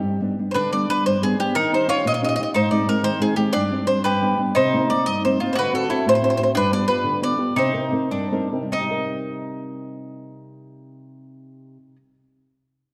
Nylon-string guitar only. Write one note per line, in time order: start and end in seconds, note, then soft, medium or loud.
0.03 0.37 G2 medium
0.21 0.38 G3 soft
0.21 0.38 B3 soft
0.21 0.38 D4 medium
0.39 0.66 G3 soft
0.39 0.66 B3 soft
0.39 0.66 D4 soft
0.55 0.88 D3 medium
0.73 0.88 G3 soft
0.73 0.89 B3 soft
0.73 0.89 D4 soft
0.89 1.16 G3 soft
0.89 1.16 B3 soft
0.89 1.16 D4 soft
1.07 1.39 G2 medium
1.22 1.37 G3 medium
1.22 1.38 B3 soft
1.22 1.38 D4 medium
1.38 1.52 G3 soft
1.38 1.52 B3 soft
1.38 1.53 D4 soft
1.56 1.88 D#3 medium
1.73 1.87 C#4 soft
1.73 1.86 D#4 soft
1.73 1.87 G4 medium
1.88 2.15 C#4 soft
1.88 2.15 D#4 soft
1.88 2.15 G4 medium
2.05 2.37 A#2 medium
2.22 2.38 C#4 medium
2.22 2.38 D#4 soft
2.22 2.38 G4 medium
2.39 2.52 C#4 soft
2.39 2.52 D#4 soft
2.39 2.52 G4 soft
2.54 2.87 G#2 medium
2.71 2.85 G#3 medium
2.71 2.86 C4 soft
2.71 2.86 D#4 medium
2.86 3.14 G#3 soft
2.86 3.14 C4 soft
2.86 3.14 D#4 soft
3.03 3.36 D#3 medium
3.20 3.36 G#3 medium
3.20 3.37 C4 soft
3.20 3.37 D#4 medium
3.37 3.51 G#3 soft
3.37 3.51 C4 soft
3.37 3.51 D#4 soft
3.55 3.88 G2 medium
3.71 3.86 G3 soft
3.71 3.86 C4 soft
3.71 3.87 D4 medium
3.87 4.01 G3 soft
3.87 4.01 C4 soft
3.87 4.02 D4 soft
4.04 4.38 G2 medium
4.22 4.37 G3 soft
4.22 4.38 B3 soft
4.22 4.38 D4 medium
4.38 4.52 G3 soft
4.38 4.52 B3 soft
4.38 4.52 D4 soft
4.56 4.89 C3 medium
4.74 4.89 A#3 soft
4.74 4.89 C4 soft
4.74 4.89 D#4 medium
4.90 5.17 A#3 soft
4.90 5.17 C4 soft
4.90 5.17 D#4 soft
5.07 5.39 G2 medium
5.25 5.41 A#3 soft
5.25 5.41 C4 medium
5.25 5.41 D#4 medium
5.42 5.54 A#3 soft
5.42 5.55 C4 soft
5.42 5.55 D#4 medium
5.59 5.90 D3 medium
5.73 5.89 C4 soft
5.73 5.89 D4 soft
5.73 5.90 F#4 soft
5.90 6.16 C4 medium
5.90 6.17 D4 soft
5.90 6.17 F#4 medium
6.06 6.38 A2 medium
6.22 6.37 C4 medium
6.22 6.38 D4 soft
6.22 6.38 F#4 medium
6.39 6.52 C4 soft
6.39 6.52 D4 soft
6.39 6.52 F#4 medium
6.57 6.88 G2 medium
6.72 6.87 B3 soft
6.72 6.88 F4 soft
6.72 6.88 G4 medium
6.88 7.15 B3 medium
6.88 7.16 F4 soft
6.88 7.16 G4 medium
7.04 7.38 D3 medium
7.22 7.36 B3 medium
7.22 7.37 F4 medium
7.22 7.38 G4 medium
7.38 7.52 B3 soft
7.38 7.53 F4 soft
7.38 7.53 G4 soft
7.56 7.92 C3 medium
7.73 7.91 C4 soft
7.73 7.91 D#4 soft
7.73 7.92 A#4 medium
7.92 8.24 C4 medium
7.92 8.24 D#4 soft
7.92 8.24 A#4 medium
8.11 8.50 G2 medium
8.32 8.51 C4 medium
8.32 8.51 D#4 medium
8.32 8.52 A#4 medium
8.52 11.77 C3 soft
8.52 8.62 C4 soft
8.52 8.68 D#4 soft
8.52 8.69 A#4 soft
8.63 11.86 G3 medium
8.72 11.95 C4 soft
8.81 8.90 G4 soft
8.91 12.14 A#4 medium